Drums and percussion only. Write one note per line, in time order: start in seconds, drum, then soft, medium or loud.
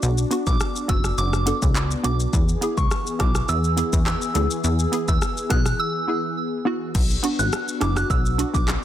0.03 shaker medium
0.18 shaker medium
0.31 closed hi-hat medium
0.31 shaker medium
0.47 kick medium
0.47 shaker medium
0.60 cross-stick loud
0.60 shaker medium
0.76 shaker medium
0.89 kick loud
0.89 closed hi-hat medium
0.89 shaker medium
1.04 cross-stick medium
1.04 shaker medium
1.18 shaker medium
1.33 cross-stick medium
1.33 shaker soft
1.47 closed hi-hat medium
1.47 shaker medium
1.62 kick medium
1.62 shaker medium
1.76 clap loud
1.76 shaker medium
1.91 shaker medium
2.04 closed hi-hat medium
2.04 shaker medium
2.20 shaker medium
2.33 kick loud
2.33 shaker medium
2.48 shaker medium
2.62 closed hi-hat medium
2.62 shaker medium
2.78 kick medium
2.78 shaker medium
2.91 cross-stick loud
2.91 shaker medium
3.07 shaker medium
3.20 kick medium
3.20 cross-stick loud
3.20 closed hi-hat medium
3.20 shaker medium
3.35 cross-stick medium
3.35 shaker medium
3.49 shaker medium
3.64 shaker medium
3.78 closed hi-hat medium
3.78 shaker medium
3.93 kick medium
3.93 shaker medium
4.06 cross-stick loud
4.06 clap medium
4.06 shaker medium
4.22 shaker medium
4.35 closed hi-hat medium
4.35 shaker medium
4.51 shaker medium
4.64 shaker medium
4.79 shaker medium
4.93 closed hi-hat medium
4.93 shaker medium
5.08 kick medium
5.08 shaker medium
5.22 cross-stick loud
5.22 shaker medium
5.37 shaker medium
5.50 kick loud
5.50 cross-stick loud
5.50 closed hi-hat medium
5.50 shaker medium
5.66 cross-stick medium
5.66 shaker medium
6.95 kick loud
6.95 crash loud
6.95 shaker medium
7.10 shaker medium
7.24 closed hi-hat medium
7.24 shaker medium
7.39 shaker medium
7.53 cross-stick loud
7.53 shaker medium
7.68 shaker medium
7.81 cross-stick loud
7.81 closed hi-hat medium
7.81 shaker medium
7.97 cross-stick medium
7.97 shaker medium
8.10 kick loud
8.10 shaker medium
8.26 shaker medium
8.39 closed hi-hat medium
8.39 shaker medium
8.55 kick medium
8.55 shaker medium
8.68 cross-stick loud
8.68 clap loud
8.68 shaker medium